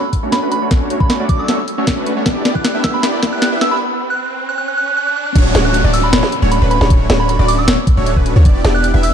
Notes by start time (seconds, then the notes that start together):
Already playing: riser
0.13 kick, closed hi-hat
0.23 A3 C#4 D4 F#4 C#5
0.32 B5, snare, closed hi-hat
0.42 A3 C#4 D4 F#4 B4
0.52 B5, closed hi-hat
0.62 A3 C#4 D4 F#4 C#5
0.71 A3 F#4, kick, snare, closed hi-hat
0.90 A3 C#4 D4 F#4 C#5, closed hi-hat
1.00 B5, kick
1.10 B5, snare, closed hi-hat
1.20 A3 C#4 D4 F#4 D5
1.29 D6, kick, closed hi-hat
1.39 E6
1.48 A3 C#4 D4 F#4 C#5, snare, closed hi-hat
1.68 closed hi-hat
1.78 A3 C#4 D4 F#4 C#5
1.87 kick, snare, closed hi-hat
1.97 A3 C#4 D4 F#4 B4
2.06 closed hi-hat
2.17 A3 C#4 D4 F#4 C#5
2.26 kick, snare, closed hi-hat
2.45 B3 D4 E4 G4 D5, snare, closed hi-hat
2.55 F#6, kick
2.65 F#6, snare, closed hi-hat
2.75 B3 D4 E4 G4 E5
2.84 E6, kick, snare, closed hi-hat
2.94 B5
3.03 B3 D4 E4 G4 D5, snare, closed hi-hat
3.23 B3 D4 E4 G4 D5, kick, snare, closed hi-hat
3.33 F#6
3.42 F#6, snare, closed hi-hat
3.52 B3 D4 E4 G4 E5
3.61 E6, snare, closed hi-hat
3.71 B5
4.10 F#6
4.49 F#6
4.58 F#6
4.68 F#6
4.77 F#6
4.88 F#6
4.97 F#6
5.07 F#6
5.16 F#6
5.26 F#6
5.36 D1 A3 C#4 D4 F#4 C#5, kick, closed hi-hat, crash, downlifter
5.55 D1 A3 C#4 D4 F#4 C#5, snare, closed hi-hat
5.65 F#6
5.74 F#6, closed hi-hat
5.84 D1 A3 C#4 D4 F#4 D5
5.94 E6, open hi-hat
6.04 B5
6.13 D1 A3 C#4 D4 F#4 C#5 B5, snare, closed hi-hat
6.23 snare
6.32 closed hi-hat
6.42 D1 A3 C#4 D4 F#4 C#5
6.52 B5, closed hi-hat
6.62 D1 A3 C#4 D4 F#4 B4
6.71 B5, closed hi-hat
6.81 D1 A3 C#4 D4 F#4 C#5, snare
6.90 D1 C#4 D4 F#4 C#5, kick, closed hi-hat
7.10 D1 A3 C#4 D4 F#4 C#5, snare, closed hi-hat
7.20 B5
7.29 B5, closed hi-hat
7.39 D1 A3 C#4 D4 F#4 D5
7.48 D6, open hi-hat
7.58 E6
7.68 D1 A3 C#4 D4 F#4 C#5, snare, closed hi-hat
7.87 kick, closed hi-hat
7.97 D1 A3 C#4 D4 F#4 C#5
8.07 closed hi-hat
8.16 D1 A3 C#4 D4 F#4 B4, kick
8.26 closed hi-hat
8.36 D2 A3 C#4 D4 F#4 C#5
8.45 E1 B3 D4 E4 G4 D5, kick, closed hi-hat
8.64 E1 B3 D4 E4 G4 D5, snare, closed hi-hat
8.75 F#6
8.84 F#6, closed hi-hat
8.94 E1 B3 D4 E4 G4 E5
9.03 E6, open hi-hat